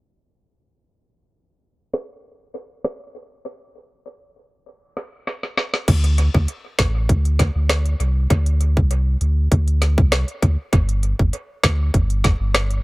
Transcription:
1.94 snare
2.85 cross-stick, snare
4.97 snare
5.27 snare
5.43 snare
5.57 snare
5.74 snare
5.88 D2, kick, closed hi-hat, crash
6.04 closed hi-hat
6.18 closed hi-hat
6.34 D2, kick
6.48 closed hi-hat
6.79 A1, kick, snare, closed hi-hat
7.09 D2, kick, closed hi-hat
7.25 closed hi-hat
7.39 kick, snare, closed hi-hat
7.56 D2
7.69 cross-stick, snare, closed hi-hat
7.86 closed hi-hat
8.00 C2, closed hi-hat
8.30 D2, kick, closed hi-hat
8.46 closed hi-hat
8.61 closed hi-hat
8.77 C2, kick
8.91 closed hi-hat
9.21 D2, closed hi-hat
9.52 D2, kick, closed hi-hat
9.68 closed hi-hat
9.82 snare, closed hi-hat
9.98 C2, kick
10.12 cross-stick, snare, closed hi-hat
10.28 closed hi-hat
10.43 D2, kick, closed hi-hat
10.73 G1, kick, closed hi-hat
10.89 closed hi-hat
11.03 closed hi-hat
11.19 G1, kick
11.33 closed hi-hat
11.64 D2, kick, snare, closed hi-hat
11.94 G1, kick, closed hi-hat
12.10 closed hi-hat
12.24 kick, snare, closed hi-hat
12.40 G1
12.55 cross-stick, snare, closed hi-hat
12.71 closed hi-hat

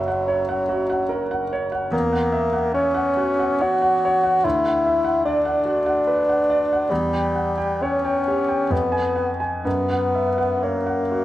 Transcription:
Already playing: F#1 F#3 E5 F#5
0.08 F#5
0.28 C#5
0.49 F#5
0.69 F#4
0.90 F#5
1.09 A#4
1.31 F#5
1.53 C#5
1.72 F#5
1.91 E2 A#3
2.13 F#5
2.32 E5
2.53 F#5
2.74 C#4 C#5
2.95 F#5
3.17 F#4
3.39 F#5
3.61 F#4 C#5
3.82 F#5
4.05 C#5
4.23 F#5
4.44 D2 E4
4.65 F#5
4.86 E5
5.05 F#5
5.25 D4 D5
5.45 F#5
5.65 F#4
5.86 F#5
6.07 B4
6.29 F#5
6.50 D5
6.73 F#5
6.91 E2 G3
7.13 G5
7.35 F#5
7.58 G5
7.83 C#4 C#5
8.05 G5
8.28 G4
8.48 G5
8.70 F2 B3
8.92 G#5
9.16 F#5
9.40 G#5
9.65 F#2 B3
9.90 F#5
10.15 E5
10.38 F#5
10.63 A#3 C#5
10.87 F#5
11.12 F#4

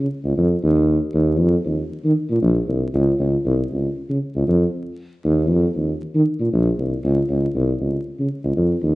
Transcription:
0.24 C#2
0.37 F2
0.63 D#2
1.14 D#2
1.40 F2
1.65 D#2
1.91 D#3
2.04 D#3
2.30 A#2
2.42 A#1
2.68 C2
2.94 C#2
3.19 C#2
3.45 C2
3.71 C#2
3.97 C#3
4.09 C#3
4.35 C#2
4.48 F2
5.24 D#2
5.50 F2
5.75 D#2
6.01 D#3
6.14 D#3
6.40 A#2
6.53 A#1
6.78 C2
7.04 C#2
7.29 C#2
7.55 C2
7.80 C#2
8.06 C#3
8.19 C#3
8.44 C#2
8.57 F2
8.83 D#2

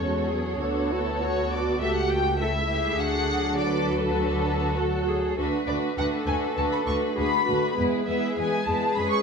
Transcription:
Already playing: A4 C#5
0.00 E2 G#3 C#4 F#4 C#5
0.30 F#3 G#4
0.61 D2 B3 D4 F#4 A4
0.91 E4 F#4 A4
1.21 F#4 A4 C#5
1.51 D5
1.80 C#2 A3 F#4 G4 A4 E5
1.95 F#5
2.10 G5
2.40 E4 A4 E5
2.69 G4 G#4
2.99 D2 A3 D4 F#4 A4 F#5
3.30 F#3
3.58 F#4 A4 B4 D5
4.03 A4
4.18 D4 F#4 A4
4.48 F#4
4.78 F#3 F#4 A4
5.07 G#4
5.37 D2 A3 D4 F#4 A4 B4
5.67 D2 A3 D4 F#4 B4 D5
5.97 D2 A3 D4 F#4 A4 B4 F#5
6.27 D2 A3 D4 F#4 B4 G#5
6.56 D2 A3 D4 F#4 B4 A5
6.72 B5
6.86 D2 A3 D4 F#4 B4 C#6
7.15 D2 A3 D4 F#4 G#4 B4 B5
7.45 D2 A3 D4 F#4 B4
7.76 E2 G#3 B3 E4 G#4 B4
8.07 E2 G#3 B3 E4 B4 E5
8.37 E2 G#3 B3 E4 B4 G#5
8.66 E2 G#3 B3 E4 B4 A5
8.95 F2 G#3 C#4 G#4 B4 B5
9.10 C#6

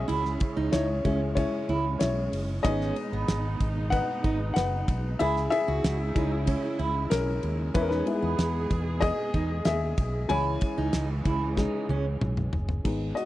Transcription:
Already playing: G#3 B3 C#4 E4 F#4 G#4 D#5 E5
0.08 C#2 C#3 E4, ride
0.25 snare
0.40 kick, ride
0.57 C#2 D#4
0.72 C#2 E4 C#5, snare, ride
1.05 C#2 G#3 C#4 E4, kick, ride
1.35 C#4 E4 C#5, kick, ride
1.69 C#2 E4, ride
1.99 B1 E4 C#5, snare, ride
2.32 F#1, open hi-hat, ride
2.63 G#1 B2 G#3 B3 C#4 D#4 G#4 D#5, kick, hi-hat pedal, ride
2.81 snare
2.96 ride
3.13 G#1 B3
3.28 G#1, snare, ride
3.60 G#1, kick, ride
3.90 B4 F#5, kick, ride
4.24 G#1 D#4, kick, ride
4.54 F#1 B4 F#5, snare, ride
4.88 B1, kick, ride
5.19 C#2 C#3 G#3 E4 G#4 E5, ride
5.36 snare
5.50 G#4 E5, ride
5.68 C#2 F#4
5.84 C#2, snare, ride
6.15 C#2 G#3 C#4 D#4 E4, kick, ride
6.47 C#4, kick, ride
6.79 C#2 E4, ride
7.10 B1 C#4 A#4, snare, ride
7.43 D#2, ride
7.74 E2 B2 C#4 E4 G#4 B4, kick, ride
7.81 A#4
7.89 D#4 B4, snare
8.06 G#3 B3 E4, ride
8.22 E2 B3
8.39 E2, snare, ride
8.70 E2, kick, ride
9.01 G#4 D#5, kick, ride
9.34 E2 D#4, kick, ride
9.65 D#2 G#4 E5, snare, ride
9.97 B1, kick, ride
10.28 C#2 C#3 E3 G#3 C#4 E4 C#5 G#5, ride
10.61 kick, ride
10.78 C#2 D#4
10.93 C#2, snare, ride
11.25 C#2 E4, kick, ride
11.56 G#3 C#4 D#4 G#4, kick, snare
11.89 C#2 C#4, high tom
12.21 B1, mid tom
12.37 mid tom
12.53 F#1, floor tom
12.69 floor tom
12.84 G#1 G#3 B3 D#4, kick, crash
13.15 F#4 D#5, closed hi-hat

